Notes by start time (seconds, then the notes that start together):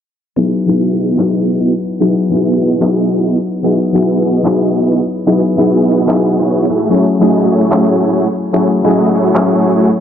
0.36 F#3 B3 D#4 E4 F#4 G#4 D#5
0.66 F#3 B3 D#4 E4 F#4 G#4 E5
0.98 B3 E4 F#4 G#4 D#5
1.17 F#3 B3 D#4 E4, clap
1.21 G#4
1.29 B3 E4 F#4 G#4 D#5
1.60 B3 E4 F#4 G#4 D#5
2.00 F#3 B3 D#4 E4 F#4 G#4 D#5
2.30 F#3 B3 D#4 E4 F#4 G#4 E5
2.34 G#4
2.62 B3 E4 F#4 G#4 D#5
2.80 F#3 B3 D#4 E4 G#4, clap
2.93 B3 E4 F#4 G#4 D#5
3.23 B3 E4 F#4 G#4 D#5
3.63 F#3 B3 D#4 E4 F#4 G#4 D#5
3.93 F#3 B3 D#4 E4 F#4 G#4 E5
3.97 G#4
4.25 B3 E4 F#4 G#4 D#5
4.43 F#3 B3 D#4 E4, clap
4.47 G#4
4.56 B3 E4 F#4 G#4 D#5
4.86 B3 E4 F#4 G#4 D#5
5.26 F#3 B3 D#4 E4 F#4 G#4 D#5
5.56 F#3 B3 D#4 E4 F#4 G#4 E5
5.60 G#4
5.88 B3 E4 F#4 G#4 D#5
6.07 F#3 B3 D#4 E4, clap
6.11 G#4
6.19 B3 E4 F#4 G#4 D#5
6.39 B3 E4 F#4 G#4 C#5
6.70 A3 E4 F#4 G#4 E5
6.89 F#3 A3 C#4 E4 F#4 G#4 C#5
7.19 F#3 A3 C#4 E4 F#4 G#4 D#5
7.51 A3 E4 F#4 G#4 C#5
7.70 F#3 A3 C#4 E4, clap
7.74 G#4
7.82 A3 E4 F#4 G#4 C#5
8.13 A3 E4 F#4 G#4 C#5
8.53 F#3 A3 C#4 E4 F#4 G#4 C#5
8.82 F#3 A3 C#4 E4 F#4 G#4 D#5
9.15 A3 E4 F#4 G#4 C#5
9.33 F#3 A3 C#4 E4, clap
9.37 G#4
9.46 A3 E4 F#4 G#4 C#5
9.76 A3 E4 F#4 G#4 C#5